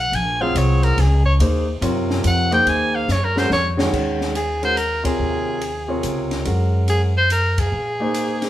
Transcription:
Already playing: B1
0.00 F#5
0.12 A#1 G#5, ride
0.41 F#3 C4 F4 G#4 F5
0.55 C2 C#5, hi-hat pedal, ride
0.83 A#4, ride
0.97 C#2 G#4, snare, ride
1.25 C#5, kick
1.39 D#2 A#3 D#4 G#4 C5, ride
1.81 F#2 C3 F4 A#4 C#5, hi-hat pedal, ride
2.10 snare
2.24 F2 F#5, hi-hat pedal, ride
2.51 A#3 D#4 G#4 C5 G5, ride
2.66 D#2 G#5, ride
2.95 F5
3.08 F#2 C#5, snare, hi-hat pedal
3.24 A#4
3.36 G#3 C#4 F#4 A#4 C5, snare
3.50 F2 C#5, snare
3.77 D#3 G#3 C#4 F#4 C#5, snare
3.93 D#2, kick, crash
4.21 snare
4.35 G#4, hi-hat pedal, ride
4.62 G#3 C#4 F#4 A#4 C5, ride
4.77 A#4, hi-hat pedal, ride
5.04 C3 F4 G#4 A#4 C#5, kick, ride
5.19 D#2
5.61 ride
5.88 C3 F4 A#4 C#5
6.03 C#2, hi-hat pedal, ride
6.31 snare, ride
6.45 F#2 G#3 C#4 F#4 A#4, ride
6.88 G#4, hi-hat pedal, ride
7.17 C5
7.30 A#4, hi-hat pedal, ride
7.58 G#4, kick, ride
7.72 A#2
8.00 A#3 D#4 G#4 C5
8.14 hi-hat pedal, ride
8.42 snare, ride

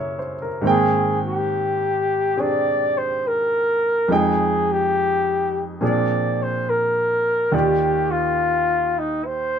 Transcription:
Already playing: F#2 C#3 A#3 E4 G#4 E5
0.00 C#5
0.19 C5
0.42 A#4
0.62 G#2 D#3 A#3 C4
0.67 G#4 G5
1.26 G4
2.37 C4 D4 G4 G#4
2.41 D5
2.98 C5
3.27 A#4
4.08 F2 F3 G#3 D#4 G5
4.13 G#4
4.72 G4
5.81 A#2 F3 C4 D4 G#4 D5
6.43 C5
6.70 A#4
7.52 D#2 D#3 F4 G4 D5
8.11 F4
8.98 D#4
9.25 C5

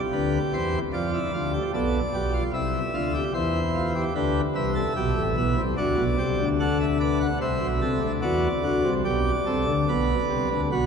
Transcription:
Already playing: G4
0.13 D2 D3 B4
0.53 E2 E3 C5
0.93 F2 F3 F4 D5
1.14 E4
1.34 D2 D3 F4
1.53 G4
1.74 B1 B2 A4 D5
2.14 B1 B2 G4
2.33 F4
2.54 C2 C3 E4 E5
2.94 D2 D3 F4
3.14 G4
3.34 E2 E3 E4 C5
3.75 F4
3.95 G4
4.15 D2 D3 G4 B4
4.55 C2 C3 B4 E5
4.75 A4
4.96 B1 B2 G4
5.16 A1 A2
5.37 B1 B2 E4
5.57 C2 C3
5.77 D2 D3 F#4 D5
5.98 B1 B2
6.18 C2 C3 G4
6.39 D2 D3
6.60 A4 F#5
6.80 E5
7.00 B4 D5
7.21 F#5
7.41 C2 C3 C5 E5
7.62 B1 B2
7.82 C2 C3 A4
8.02 D2 D3
8.22 E2 E3 F#4 D5
8.63 D2 D3 F#4
8.84 C2 C3
9.05 B1 B2 G4 D5
9.46 C2 C3 A4
9.67 D2 D3
9.88 B1 B2 B4
10.30 C2 C3
10.50 D2 D3
10.72 B1 B2 F#4 B4

